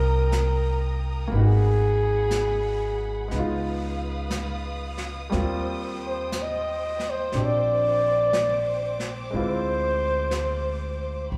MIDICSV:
0, 0, Header, 1, 6, 480
1, 0, Start_track
1, 0, Tempo, 1003344
1, 627, Time_signature, 4, 2, 24, 8
1, 3994, Tempo, 990099
1, 5461, End_track
2, 0, Start_track
2, 0, Title_t, "String section"
2, 0, Program_c, 0, 48
2, 0, Note_on_c, 0, 70, 56
2, 0, Note_on_c, 0, 79, 54
2, 0, Note_on_c, 0, 82, 53
2, 0, Note_on_c, 0, 87, 65
2, 605, Note_off_c, 0, 82, 0
2, 609, Note_off_c, 0, 70, 0
2, 612, Note_off_c, 0, 79, 0
2, 613, Note_off_c, 0, 87, 0
2, 633, Note_on_c, 0, 83, 67
2, 636, Note_on_c, 0, 78, 54
2, 643, Note_on_c, 0, 68, 59
2, 1581, Note_off_c, 0, 83, 0
2, 1583, Note_off_c, 0, 78, 0
2, 1586, Note_off_c, 0, 68, 0
2, 1590, Note_on_c, 0, 71, 57
2, 1590, Note_on_c, 0, 87, 70
2, 1597, Note_on_c, 0, 77, 57
2, 2544, Note_off_c, 0, 71, 0
2, 2547, Note_off_c, 0, 77, 0
2, 2550, Note_on_c, 0, 79, 52
2, 2557, Note_on_c, 0, 72, 53
2, 3497, Note_off_c, 0, 87, 0
2, 3517, Note_on_c, 0, 86, 66
2, 4455, Note_off_c, 0, 79, 0
2, 5416, Note_off_c, 0, 86, 0
2, 5417, Note_off_c, 0, 72, 0
2, 5429, Note_on_c, 0, 67, 66
2, 5429, Note_on_c, 0, 83, 69
2, 5461, Note_off_c, 0, 67, 0
2, 5461, Note_off_c, 0, 83, 0
2, 5461, End_track
3, 0, Start_track
3, 0, Title_t, "Flugelhorn"
3, 0, Program_c, 1, 56
3, 0, Note_on_c, 1, 70, 74
3, 481, Note_off_c, 1, 70, 0
3, 652, Note_on_c, 1, 68, 89
3, 1581, Note_off_c, 1, 68, 0
3, 2903, Note_on_c, 1, 72, 73
3, 3072, Note_on_c, 1, 75, 84
3, 3080, Note_off_c, 1, 72, 0
3, 3397, Note_on_c, 1, 72, 71
3, 3405, Note_off_c, 1, 75, 0
3, 3564, Note_on_c, 1, 74, 74
3, 3571, Note_off_c, 1, 72, 0
3, 4339, Note_off_c, 1, 74, 0
3, 4497, Note_on_c, 1, 72, 89
3, 5426, Note_off_c, 1, 72, 0
3, 5461, End_track
4, 0, Start_track
4, 0, Title_t, "Grand piano"
4, 0, Program_c, 2, 0
4, 0, Control_c, 2, 64, 127
4, 0, Note_on_c, 2, 56, 46
4, 0, Note_on_c, 2, 58, 36
4, 0, Note_on_c, 2, 62, 34
4, 0, Note_on_c, 2, 63, 45
4, 0, Note_on_c, 2, 65, 44
4, 0, Note_on_c, 2, 79, 53
4, 603, Note_off_c, 2, 58, 0
4, 610, Note_on_c, 2, 58, 48
4, 627, Note_off_c, 2, 56, 0
4, 627, Note_off_c, 2, 62, 0
4, 630, Note_off_c, 2, 63, 0
4, 630, Note_on_c, 2, 59, 45
4, 632, Note_off_c, 2, 79, 0
4, 634, Note_off_c, 2, 65, 0
4, 634, Control_c, 2, 64, 0
4, 647, Note_on_c, 2, 63, 43
4, 663, Note_on_c, 2, 66, 50
4, 728, Control_c, 2, 64, 127
4, 1569, Note_on_c, 2, 56, 43
4, 1578, Note_off_c, 2, 59, 0
4, 1580, Note_off_c, 2, 58, 0
4, 1585, Note_on_c, 2, 59, 42
4, 1593, Control_c, 2, 64, 0
4, 1595, Note_off_c, 2, 63, 0
4, 1602, Note_on_c, 2, 63, 40
4, 1606, Note_off_c, 2, 66, 0
4, 1621, Note_on_c, 2, 65, 51
4, 1670, Control_c, 2, 64, 127
4, 2534, Note_on_c, 2, 55, 49
4, 2543, Note_off_c, 2, 56, 0
4, 2544, Note_on_c, 2, 58, 43
4, 2547, Note_on_c, 2, 60, 40
4, 2551, Note_off_c, 2, 59, 0
4, 2552, Note_off_c, 2, 65, 0
4, 2559, Note_off_c, 2, 63, 0
4, 2559, Control_c, 2, 64, 0
4, 2560, Note_on_c, 2, 65, 54
4, 2655, Control_c, 2, 64, 127
4, 3504, Note_off_c, 2, 60, 0
4, 3511, Note_on_c, 2, 60, 37
4, 3515, Note_on_c, 2, 62, 34
4, 3520, Note_on_c, 2, 67, 41
4, 4458, Note_off_c, 2, 60, 0
4, 4458, Note_on_c, 2, 56, 48
4, 4465, Note_on_c, 2, 60, 42
4, 4466, Note_off_c, 2, 55, 0
4, 4471, Note_off_c, 2, 58, 0
4, 4476, Note_off_c, 2, 62, 0
4, 4476, Note_off_c, 2, 65, 0
4, 4476, Note_on_c, 2, 64, 44
4, 4478, Note_off_c, 2, 67, 0
4, 4483, Control_c, 2, 64, 0
4, 4483, Note_on_c, 2, 65, 51
4, 4554, Control_c, 2, 64, 127
4, 5426, Note_off_c, 2, 56, 0
4, 5429, Note_off_c, 2, 60, 0
4, 5435, Note_off_c, 2, 64, 0
4, 5438, Note_off_c, 2, 65, 0
4, 5442, Control_c, 2, 64, 0
4, 5461, End_track
5, 0, Start_track
5, 0, Title_t, "Upright bass"
5, 0, Program_c, 3, 32
5, 0, Note_on_c, 3, 36, 72
5, 607, Note_off_c, 3, 36, 0
5, 629, Note_on_c, 3, 32, 67
5, 1570, Note_off_c, 3, 32, 0
5, 1587, Note_on_c, 3, 37, 67
5, 2533, Note_off_c, 3, 37, 0
5, 2551, Note_on_c, 3, 39, 69
5, 3495, Note_off_c, 3, 39, 0
5, 3510, Note_on_c, 3, 34, 65
5, 4454, Note_off_c, 3, 34, 0
5, 4475, Note_on_c, 3, 38, 66
5, 5415, Note_off_c, 3, 38, 0
5, 5434, Note_on_c, 3, 37, 68
5, 5461, Note_off_c, 3, 37, 0
5, 5461, End_track
6, 0, Start_track
6, 0, Title_t, "Drums"
6, 154, Note_on_c, 9, 25, 33
6, 154, Note_on_c, 9, 38, 36
6, 154, Note_on_c, 9, 44, 48
6, 202, Note_off_c, 9, 38, 0
6, 202, Note_off_c, 9, 44, 0
6, 629, Note_off_c, 9, 25, 0
6, 629, Note_on_c, 9, 25, 32
6, 1104, Note_off_c, 9, 25, 0
6, 1104, Note_on_c, 9, 25, 28
6, 1104, Note_on_c, 9, 38, 33
6, 1104, Note_on_c, 9, 44, 48
6, 1152, Note_off_c, 9, 38, 0
6, 1152, Note_off_c, 9, 44, 0
6, 1584, Note_off_c, 9, 25, 0
6, 1584, Note_on_c, 9, 25, 36
6, 1584, Note_on_c, 9, 38, 26
6, 1632, Note_off_c, 9, 38, 0
6, 2060, Note_off_c, 9, 25, 0
6, 2060, Note_on_c, 9, 25, 34
6, 2060, Note_on_c, 9, 38, 37
6, 2060, Note_on_c, 9, 44, 42
6, 2107, Note_off_c, 9, 38, 0
6, 2107, Note_off_c, 9, 44, 0
6, 2381, Note_on_c, 9, 38, 25
6, 2428, Note_off_c, 9, 38, 0
6, 2546, Note_off_c, 9, 25, 0
6, 2546, Note_on_c, 9, 25, 33
6, 2546, Note_on_c, 9, 38, 23
6, 2594, Note_off_c, 9, 38, 0
6, 3025, Note_off_c, 9, 25, 0
6, 3025, Note_on_c, 9, 25, 30
6, 3025, Note_on_c, 9, 38, 36
6, 3025, Note_on_c, 9, 44, 48
6, 3072, Note_off_c, 9, 38, 0
6, 3072, Note_off_c, 9, 44, 0
6, 3346, Note_on_c, 9, 38, 25
6, 3394, Note_off_c, 9, 38, 0
6, 3503, Note_off_c, 9, 25, 0
6, 3503, Note_on_c, 9, 25, 33
6, 3503, Note_on_c, 9, 38, 25
6, 3551, Note_off_c, 9, 38, 0
6, 3986, Note_off_c, 9, 25, 0
6, 3986, Note_on_c, 9, 25, 33
6, 3986, Note_on_c, 9, 38, 38
6, 3986, Note_on_c, 9, 44, 45
6, 4034, Note_off_c, 9, 38, 0
6, 4034, Note_off_c, 9, 44, 0
6, 4308, Note_on_c, 9, 38, 25
6, 4356, Note_off_c, 9, 38, 0
6, 4469, Note_off_c, 9, 25, 0
6, 4469, Note_on_c, 9, 25, 31
6, 4945, Note_off_c, 9, 25, 0
6, 4945, Note_on_c, 9, 25, 31
6, 4945, Note_on_c, 9, 38, 36
6, 4945, Note_on_c, 9, 44, 47
6, 4994, Note_off_c, 9, 38, 0
6, 4994, Note_off_c, 9, 44, 0
6, 5424, Note_off_c, 9, 25, 0
6, 5424, Note_on_c, 9, 25, 36
6, 5461, Note_off_c, 9, 25, 0
6, 5461, End_track
0, 0, End_of_file